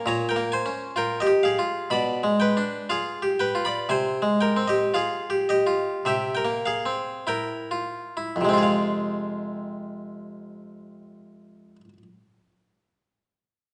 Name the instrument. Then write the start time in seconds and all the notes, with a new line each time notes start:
harpsichord
0.06 A#2 C#5 A#5
0.29 A#4 G5
0.36 A#3
0.52 C5 G#5
0.66 C#4
0.96 F4 A#4 G5
1.20 G4 D#5
1.27 G4
1.43 G#4 F5
1.59 F4
1.90 B2 D5 B5
2.23 G#3
2.40 B4 G5
2.57 D4
2.90 F4 G#4 F5
3.22 G4
3.40 B4 G5
3.55 F4
3.65 D5 B5
3.89 C3 C5 G#5
4.22 G#3
4.41 A#4 G5
4.57 C4
4.68 G4 D#5
4.94 F4 G#4 F5
5.30 G4
5.49 G4 D#5
5.67 F4
6.05 C3 G4 E5
6.35 A#4 G5
6.45 A#3
6.66 G#4 F5
6.86 C4
7.27 E4 A#4 G5
7.71 F4
8.17 E4
8.36 F2
8.41 C3 G#3
8.49 C4
8.53 F4
8.58 G#4
8.63 F5